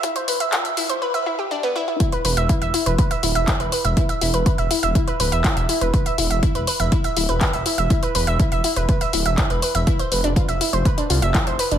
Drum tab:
HH |xxoxxxox--------|xxoxxxoxxxoxxxox|xxoxxxoxxxoxxxox|xxoxxxoxxxoxxxox|
CP |----x-----------|------------x---|------------x---|------------x---|
BD |o---o-----------|o---o---o---o---|o---o---o---o---|o---o---o---o---|

HH |xxoxxxoxxxoxxxox|xxoxxxoxxxoxxxox|
CP |------------x---|------------x---|
BD |o---o---o---o---|o---o---o---o---|